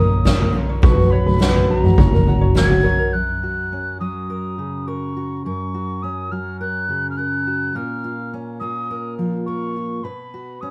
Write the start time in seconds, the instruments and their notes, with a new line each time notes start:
Already playing: upright bass A#1, twelve-string acoustic guitar F4 A#4, ukulele F4 A#4 C#5, tin whistle D#6
0.00 twelve-string acoustic guitar A#3 C#4
0.25 twelve-string acoustic guitar A#2 F3 A#3 C#4 F4 A#4, ukulele C#5, kick, snare
0.39 ukulele A#4, floor tom
0.53 twelve-string acoustic guitar A#3 C#4 F4 A#4, ukulele F4
0.69 ukulele C#5
0.82 upright bass B1, twelve-string acoustic guitar B2 F#3 C#4 F#4 B4, ukulele B4, tin whistle C#6, kick, floor tom
0.97 ukulele F#4, mid tom
1.10 twelve-string acoustic guitar C#4 F#4 B4, ukulele C#5, tin whistle B5
1.26 ukulele B4, floor tom
1.38 twelve-string acoustic guitar B2 F#3 C#4 F#4 B4, ukulele F#4, snare
1.54 ukulele C#5, floor tom
1.70 ukulele B4, tin whistle A#5
1.84 ukulele F#4, mid tom
1.96 upright bass F#1, twelve-string acoustic guitar F#3 C#4 F#4 A#4, ukulele C#5, kick, floor tom
2.13 ukulele A#4, mid tom
2.26 twelve-string acoustic guitar F#3 C#4 F#4 A#4, ukulele F#4, floor tom
2.41 ukulele C#5
2.55 twelve-string acoustic guitar F#2 C#3 F#3 C#4 F#4 A#4, ukulele A#4, tin whistle G#6, snare, mid tom
2.70 ukulele F#4, floor tom
2.83 twelve-string acoustic guitar F#3 C#4 F#4 A#4, ukulele C#5
2.99 ukulele A#4
3.13 steel-string acoustic guitar F#2 A#4, tin whistle F#6
3.43 steel-string acoustic guitar F#4
3.72 steel-string acoustic guitar C#4
4.00 steel-string acoustic guitar F#3 F#4, tin whistle D#6
4.30 steel-string acoustic guitar A#4
4.58 steel-string acoustic guitar C#3 F#4
4.88 steel-string acoustic guitar A#4, tin whistle C#6
5.17 steel-string acoustic guitar F#4
5.45 steel-string acoustic guitar F#2 A#4, tin whistle C#6
5.74 steel-string acoustic guitar F#4
6.03 steel-string acoustic guitar C#4, tin whistle D#6
6.32 steel-string acoustic guitar F#3 F#4, tin whistle F6
6.61 steel-string acoustic guitar A#4, tin whistle F#6
6.89 steel-string acoustic guitar C#3 F#4
7.11 tin whistle F6
7.17 steel-string acoustic guitar A#4, tin whistle F#6
7.47 steel-string acoustic guitar F#4
7.75 steel-string acoustic guitar A#2 A#4, tin whistle F6
8.04 steel-string acoustic guitar F4
8.34 steel-string acoustic guitar C#4
8.60 steel-string acoustic guitar A#3 F4, tin whistle D#6
8.91 steel-string acoustic guitar A#4
9.18 steel-string acoustic guitar F3 F4
9.46 steel-string acoustic guitar A#4, tin whistle C#6
9.76 steel-string acoustic guitar F4
10.04 steel-string acoustic guitar B2 B4, tin whistle B5
10.34 steel-string acoustic guitar F#4
10.61 steel-string acoustic guitar C#4, tin whistle D#6